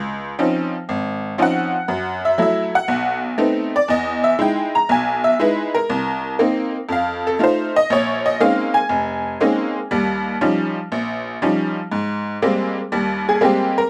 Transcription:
0.00 0.32 C#2 medium
0.39 0.74 F3 medium
0.39 0.74 C4 soft
0.39 0.74 C#4 soft
0.39 0.74 D#4 medium
0.89 1.32 G#1 medium
1.38 1.74 F3 medium
1.38 1.74 C4 soft
1.38 1.74 C#4 soft
1.38 1.74 D#4 medium
1.42 2.20 F#5 medium
1.88 2.32 F#2 medium
2.25 2.39 E5 medium
2.38 2.74 F#3 medium
2.38 2.74 A3 soft
2.38 2.74 E4 medium
2.42 2.73 E5 medium
2.75 3.20 F#5 medium
2.88 3.32 B1 medium
3.38 3.74 A3 medium
3.38 3.74 B3 soft
3.38 3.74 C4 soft
3.38 3.74 D#4 medium
3.76 3.90 D5 medium
3.88 4.32 E2 medium
3.88 4.22 D#5 medium
4.24 4.39 E5 medium
4.39 4.74 G#3 medium
4.39 4.74 D#4 soft
4.39 4.74 E4 medium
4.39 4.73 G5 medium
4.75 4.90 A#5 loud
4.89 5.33 B1 medium
4.89 5.23 G#5 medium
5.24 5.39 E5 medium
5.39 5.75 G#3 medium
5.39 5.75 D#4 soft
5.39 5.75 E4 medium
5.39 5.73 B4 medium
5.75 6.36 A#4 medium
5.90 6.33 C2 medium
6.39 6.75 A#3 medium
6.39 6.75 C4 medium
6.39 6.75 D#4 medium
6.89 7.33 F2 medium
6.89 7.24 F5 medium
7.27 7.41 A4 medium
7.39 7.75 A3 medium
7.39 7.75 D#4 medium
7.39 7.76 F4 medium
7.44 7.75 C5 medium
7.76 7.91 D#5 loud
7.90 8.34 A#1 medium
7.90 8.24 C#5 medium
8.26 8.41 D#5 medium
8.40 8.76 G#3 medium
8.40 8.76 A#3 medium
8.40 8.76 C4 medium
8.40 8.76 C#4 soft
8.40 8.76 D#4 medium
8.40 8.74 F5 medium
8.74 9.87 G#5 medium
8.89 9.34 F1 medium
9.40 9.76 G#3 medium
9.40 9.76 A#3 medium
9.40 9.76 C4 soft
9.40 9.76 C#4 medium
9.40 9.77 D#4 medium
9.91 10.35 D#2 medium
9.91 10.35 G3 medium
10.41 10.77 F3 medium
10.41 10.77 G3 soft
10.41 10.77 C#4 medium
10.41 10.77 D#4 medium
10.92 11.35 A#1 medium
11.42 11.78 F3 medium
11.42 11.78 G3 medium
11.42 11.78 C#4 medium
11.42 11.78 D#4 medium
11.92 12.36 G#2 medium
12.42 12.78 G3 medium
12.42 12.78 G#3 medium
12.42 12.78 A#3 soft
12.42 12.78 C4 medium
12.92 13.36 D#2 medium
12.92 13.36 G3 medium
13.29 13.44 G#4 medium
13.41 13.78 G3 medium
13.41 13.78 G#3 medium
13.41 13.78 A#3 soft
13.41 13.78 C4 medium
13.41 13.77 G4 medium
13.78 13.90 A#4 medium

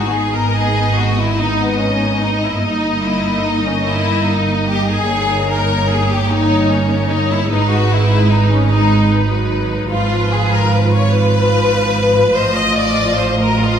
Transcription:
0.00 0.10 G#3 soft
0.00 0.10 B3 soft
0.00 0.11 F#4 soft
0.11 2.58 G#1 soft
0.11 2.58 G#2 soft
0.11 1.34 B3 soft
0.11 1.34 D#4 soft
0.11 0.33 G#4 soft
0.11 1.34 D#5 soft
0.34 0.54 A#4 soft
0.55 0.96 G#4 soft
0.97 1.17 F#4 soft
1.19 1.39 E4 soft
1.37 2.60 B3 soft
1.37 2.60 D#4 soft
1.37 1.59 D#4 medium
1.37 2.60 D#5 soft
1.61 1.80 B3 soft
1.79 2.20 C#4 soft
2.21 2.42 D#4 soft
2.43 2.63 E4 soft
2.61 5.05 G1 soft
2.61 5.05 G2 soft
2.61 5.05 A#3 soft
2.61 5.05 D#4 soft
2.61 3.03 D#4 soft
2.61 5.05 D#5 soft
3.03 3.45 E4 soft
3.45 3.66 D#4 soft
3.65 3.86 C#4 soft
3.86 4.27 E4 medium
4.28 4.68 D#4 soft
4.68 4.88 G4 medium
4.88 5.48 G#4 medium
5.08 7.45 G1 soft
5.08 7.45 G2 soft
5.08 6.26 A#3 soft
5.08 6.26 D#4 soft
5.08 6.26 C#5 soft
5.49 5.88 A#4 medium
5.90 6.09 G#4 soft
6.10 6.29 G4 soft
6.28 7.47 A#3 soft
6.28 7.47 D#4 soft
6.28 6.69 D#4 medium
6.28 7.48 C#5 soft
6.69 7.09 C#4 medium
7.09 7.29 D#4 medium
7.30 7.50 E4 medium
7.49 9.87 G#1 soft
7.49 9.87 G#2 soft
7.49 8.67 G#3 soft
7.49 8.67 D#4 soft
7.49 7.70 D#4 medium
7.49 8.69 B4 soft
7.72 7.91 F#4 medium
7.91 8.31 E4 medium
8.30 8.50 D#4 soft
8.52 8.71 C#4 medium
8.69 9.28 G#3 soft
8.69 9.88 D#4 soft
8.69 9.10 D#4 medium
8.69 9.89 B4 soft
9.28 9.89 F#3 soft
9.89 12.31 G#1 soft
9.89 12.31 G#2 medium
9.89 11.11 F3 soft
9.89 11.11 F4 soft
9.89 10.29 F4 medium
9.89 11.11 B4 soft
10.30 10.51 G#4 medium
10.52 10.72 A#4 medium
10.73 10.93 B4 medium
10.93 11.13 C#5 medium
11.12 12.33 F3 soft
11.12 12.32 F4 medium
11.12 12.35 B4 medium
11.12 12.33 B4 medium
12.34 13.79 A1 soft
12.34 13.79 A2 soft
12.34 13.57 F3 soft
12.34 13.57 F4 soft
12.34 12.56 C5 medium
12.34 13.60 D#5 soft
12.56 12.77 D#5 medium
12.77 13.18 D5 medium
13.18 13.39 C5 medium
13.39 13.59 A#4 medium
13.59 13.79 F3 soft
13.59 13.79 F4 soft
13.59 13.79 F4 medium
13.59 13.79 D#5 soft

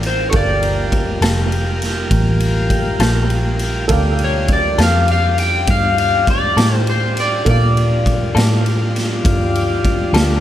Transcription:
0.00 0.29 A1 medium
0.00 0.29 A#3 medium
0.00 0.30 F4 medium
0.00 0.30 G4 medium
0.00 ride medium
0.07 0.28 C5 medium
0.30 1.19 G1 medium
0.30 3.86 G3 medium
0.30 3.86 F4 medium
0.30 3.86 G4 medium
0.30 3.84 A4 soft
0.30 3.85 A#4 soft
0.30 0.34 C#5 medium
0.30 kick loud
0.30 ride medium
0.34 3.86 A#3 medium
0.34 1.19 D5 medium
0.34 3.86 F5 soft
0.63 ride medium
0.92 kick medium
0.92 ride medium
1.21 2.08 F1 medium
1.21 1.41 G3 medium
1.21 1.40 A#3 medium
1.21 1.40 F4 medium
1.21 1.40 A4 medium
1.21 snare loud
1.21 ride medium
1.52 ride medium
1.82 snare soft
1.82 ride medium
2.11 2.97 A1 loud
2.11 kick loud
2.11 ride medium
2.40 ride medium
2.70 kick medium
2.70 ride medium
2.99 3.86 A#1 medium
2.99 3.19 G3 medium
2.99 3.18 A#3 medium
2.99 3.18 F4 medium
2.99 3.18 A4 medium
2.99 snare loud
2.99 ride medium
3.30 ride medium
3.59 ride medium
3.88 4.75 D2 medium
3.88 7.43 G3 medium
3.88 7.43 D4 medium
3.88 7.43 F4 medium
3.88 7.43 G4 medium
3.88 7.41 A4 medium
3.88 7.42 A#4 medium
3.88 7.43 F5 medium
3.88 kick loud
3.88 ride medium
4.19 ride medium
4.24 4.52 C#5 medium
4.48 kick medium
4.48 ride medium
4.53 4.78 D5 medium
4.78 5.65 F2 loud
4.78 4.97 G3 medium
4.78 4.97 A#3 medium
4.78 4.97 F4 medium
4.78 4.96 A4 medium
4.78 snare loud
4.78 ride medium
4.83 5.10 F5 loud
5.08 5.39 F5 loud
5.08 ride medium
5.38 5.69 G5 loud
5.38 ride medium
5.67 6.54 G2 medium
5.67 5.98 F5 loud
5.67 kick loud
5.67 ride medium
5.98 6.26 F5 loud
5.98 ride medium
6.27 6.76 D5 medium
6.27 kick medium
6.27 ride medium
6.57 7.43 A2 medium
6.57 6.76 G3 medium
6.57 6.75 A#3 medium
6.57 6.75 F4 medium
6.57 6.75 A4 medium
6.57 snare loud
6.57 ride medium
6.76 6.90 C5 medium
6.87 7.19 C5 medium
6.87 ride medium
7.17 7.49 D5 medium
7.17 ride medium
7.45 8.33 A#2 medium
7.45 10.40 F3 medium
7.45 10.40 G3 medium
7.45 10.40 D4 medium
7.45 10.40 F4 medium
7.45 10.40 A4 soft
7.45 10.40 A#4 soft
7.45 10.40 F5 medium
7.45 kick loud
7.45 ride medium
7.50 8.63 D5 medium
7.77 ride medium
8.06 kick medium
8.06 ride medium
8.35 9.22 A2 medium
8.35 8.54 G3 medium
8.35 8.54 A#3 medium
8.35 8.53 F4 medium
8.35 8.53 A4 medium
8.35 snare loud
8.35 ride medium
8.66 ride medium
8.96 snare soft
8.96 ride medium
9.25 10.11 G2 medium
9.25 kick loud
9.25 ride medium
9.55 ride medium
9.85 kick medium
9.85 ride medium
10.13 10.40 D2 medium
10.13 10.33 G3 medium
10.13 10.32 A#3 medium
10.13 10.32 F4 medium
10.13 10.32 A4 medium
10.13 snare loud
10.13 ride medium

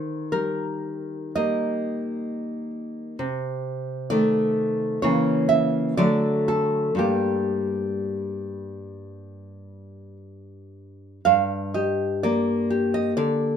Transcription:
0.00 3.15 D#3 soft
0.00 0.28 C5 medium
0.32 1.34 G3 soft
0.32 1.31 A#4 medium
1.35 3.16 G3 soft
1.35 3.16 A#3 soft
1.35 2.70 D#5 medium
3.19 4.98 C3 medium
4.10 4.98 D#3 soft
4.10 4.99 A3 soft
4.10 4.98 D5 medium
5.02 5.95 C#3 medium
5.02 5.94 E3 soft
5.02 5.94 A#3 soft
5.02 5.47 C#5 medium
5.49 5.95 E5 medium
5.97 6.94 D3 medium
5.97 6.96 F#3 soft
5.97 6.96 A3 soft
5.97 6.46 D5 medium
6.48 6.98 A4 medium
6.95 11.20 G2 soft
6.95 11.21 G3 soft
6.95 11.21 A#3 soft
6.95 10.16 G4 medium
11.25 13.13 G2 medium
11.25 11.73 F5 medium
11.74 12.69 G4 soft
11.74 12.21 D#5 medium
12.23 13.57 A#3 soft
12.23 12.91 D5 medium
12.70 13.57 G4 soft
12.94 13.16 D#5 medium
13.17 13.57 D3 soft
13.17 13.57 D5 medium

